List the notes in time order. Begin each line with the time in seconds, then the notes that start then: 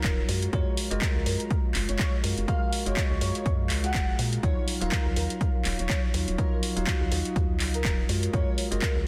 Already playing: F#3 D#4 F4 A#4 C#5 F5
0.04 D#1, kick, clap, closed hi-hat
0.28 F#2 G#3 F4 F#4 A#4 F5, open hi-hat
0.42 closed hi-hat
0.53 F#2 G#3 F4 F#4 A#4 C#5, kick, closed hi-hat
0.77 open hi-hat
0.91 F#1 G#3 F4 F#4 A#4 D#5, closed hi-hat
1.02 kick, clap, closed hi-hat
1.16 C#2
1.26 F#2 A#4, open hi-hat
1.40 closed hi-hat
1.51 kick, closed hi-hat
1.75 F#1, clap, open hi-hat
1.89 F#1 C#5, closed hi-hat
1.99 kick, clap, closed hi-hat
2.23 F#2 G#3 F4 F#4 A#4, open hi-hat
2.38 F#1, closed hi-hat
2.48 G#3 F4 F#4 A#4 F5, kick, closed hi-hat
2.73 open hi-hat
2.86 F#1 G#3 F4 F#4 C#5 D#5, closed hi-hat
2.97 kick, clap, closed hi-hat
3.11 C#2
3.21 F#2 C#5, open hi-hat
3.35 closed hi-hat
3.46 F#2, kick, closed hi-hat
3.70 C#2, clap, open hi-hat
3.83 G#3 F4 F#4 G#4 F#5, closed hi-hat
3.94 F#1, kick, clap, closed hi-hat
4.19 A#2, open hi-hat
4.33 closed hi-hat
4.43 D#2 F#3 D#4 F4 C#5, kick, closed hi-hat
4.68 open hi-hat
4.81 D#1 F#3 D#4 F4 A#4 F5, closed hi-hat
4.92 kick, clap, closed hi-hat
5.06 C#2
5.16 D#2 A#4, open hi-hat
5.30 closed hi-hat
5.41 kick, closed hi-hat
5.65 D#1, clap, open hi-hat
5.79 D#1 C#5, closed hi-hat
5.90 kick, clap, closed hi-hat
6.14 D#2 F#3 D#4 F4 C#5, open hi-hat
6.28 D#1, closed hi-hat
6.38 F#3 D#4 F4 A#4 C#5 D#5, kick, closed hi-hat
6.63 open hi-hat
6.76 D#1 F#3 D#4 F4 F#4 F5, closed hi-hat
6.87 kick, clap, closed hi-hat
7.01 C#2
7.12 D#2 F#4, open hi-hat
7.25 closed hi-hat
7.36 D#2, kick, closed hi-hat
7.60 C#2, clap, open hi-hat
7.74 A#4, closed hi-hat
7.85 D#1, kick, clap, closed hi-hat
8.09 F#2 G#3 F4 F#4 A#4, open hi-hat
8.23 closed hi-hat
8.33 F#2 G#3 F4 F#4 A#4 C#5, kick, closed hi-hat
8.58 open hi-hat
8.71 F#1 G#3 F4 F#4 A#4 D#5, closed hi-hat
8.82 kick, clap, closed hi-hat
8.96 C#2